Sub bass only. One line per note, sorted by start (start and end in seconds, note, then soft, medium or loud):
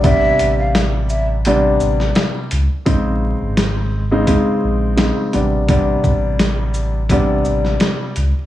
0.00 0.30 A1 loud
0.40 1.77 A1 loud
1.81 2.12 A1 loud
2.52 2.68 C#2 loud
2.87 3.34 A#1 loud
3.41 4.24 G#1 medium
4.63 5.10 A#1 medium
5.34 5.95 A1 loud
6.04 7.41 A1 loud
7.46 7.76 A1 medium
8.16 8.33 C#2 loud